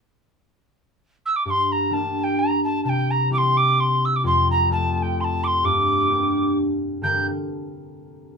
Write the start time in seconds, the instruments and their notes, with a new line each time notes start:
1.25 tin whistle E6
1.36 tin whistle D6
1.45 harp G2, tin whistle D6
1.50 tin whistle C6
1.72 tin whistle A#5
1.91 harp G3 A#3 D4, tin whistle A5
2.19 tin whistle A5
2.23 tin whistle G5
2.39 tin whistle A#5
2.64 tin whistle A5
2.84 harp C3, tin whistle A5
2.89 tin whistle G5
3.10 tin whistle A#5
3.30 harp G3 C4 E4, tin whistle D6
3.37 tin whistle C6
3.57 tin whistle D6
3.80 tin whistle C6
4.05 tin whistle E6
4.16 tin whistle D6
4.24 harp F2, tin whistle C6
4.51 tin whistle A#5
4.70 harp A3 C4 F4, tin whistle A5
4.97 tin whistle A5
5.02 tin whistle G5
5.20 tin whistle A5 C6
5.43 tin whistle C6 D6
5.63 harp G2, tin whistle D6
6.09 harp A#3 D4 G4
7.02 harp G2 D3 D4 A#4 G5 A#5, tin whistle G6